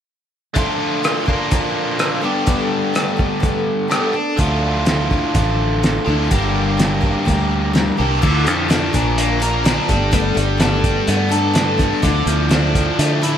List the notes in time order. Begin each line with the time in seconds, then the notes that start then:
0.54 D3 F3 A3 D4 F4 A4, kick, closed hi-hat
1.03 F3 D4 E4 A4, cross-stick, closed hi-hat
1.26 A#2 D3 F3 A#3 D4 A#4, kick
1.30 F4
1.50 F3 A#3 D4 A#4, kick, closed hi-hat
1.99 F3 A#3 D4 A#4, cross-stick, closed hi-hat
2.22 G2 D3 G3 A3 B3 D4 A4
2.26 G4
2.46 G2 D3 A3 B3 D4 A4, kick, closed hi-hat
2.94 A3 B3 D4 A4, cross-stick, closed hi-hat
3.17 A3 B3 D4 A4, kick
3.40 A3 B3 D4 A4, kick, closed hi-hat
3.88 G2 D3 G3 A3 B3 D4 A4, cross-stick, closed hi-hat
3.93 D4 G4
4.13 A3 B3 D4 A4
4.36 D2 D3 F3 A3 D4 F4 A4, kick, closed hi-hat
4.85 F3 D4 E4 A4, snare, closed hi-hat
5.11 D4 E4 A4, kick
5.35 A1 F3 D4 A4, kick, closed hi-hat
5.83 F3 D4 E4 A4, snare, closed hi-hat
6.05 D2 D3 A3 D4 E4 F4 A4
6.09 D4
6.30 G1 G2 D3 G3 A#3 D4 G4 A#4, kick, closed hi-hat
6.78 G3 A#3 D4 A#4, snare, closed hi-hat
7.01 G3 A#3 D4 A#4, kick
7.25 D2 G3 A#3 D4 A#4, kick, closed hi-hat
7.73 G3 A#3 D4 A#4, snare, closed hi-hat
7.97 C2 D3 G3 A#3 D4 G4 A#4
8.02 G2
8.22 D2 D3 F3 D4 E4 A4, kick, crash
8.44 F2 F3 D4 E4 A4, closed hi-hat
8.68 F3 D4 E4 A4, snare, closed hi-hat
8.93 A#1 A#2 D3 F3 A#3 D4 A#4, kick, closed hi-hat
9.18 A#3, closed hi-hat
9.40 F3 A#3 D4 A#4, closed hi-hat
9.64 F3 A#3 D4 A#4, snare, closed hi-hat
9.88 G1 G3 A3 B3 D4 A4, kick, closed hi-hat
10.11 G2 D3 G3 A3 B3 D4 A4, kick, closed hi-hat
10.35 G1 G3 A3 B3 D4 A4, closed hi-hat
10.58 A3 B3 D4 A4, snare, closed hi-hat
10.84 G3, kick, closed hi-hat
11.07 G2 B3, closed hi-hat
11.29 A3 B3 D4 A4, closed hi-hat
11.53 A3 B3 D4 A4, snare, closed hi-hat
11.78 G3 A3 B3 D4 A4, kick, snare, closed hi-hat
12.02 D2 D3 F3 D4 E4 A4, kick, closed hi-hat
12.26 D2 F3 D4 E4 A4, closed hi-hat
12.49 F3 D4 E4 A4, snare, closed hi-hat
12.75 F3, kick, closed hi-hat
12.98 D3 A3, closed hi-hat
13.22 D4 E4 A4, closed hi-hat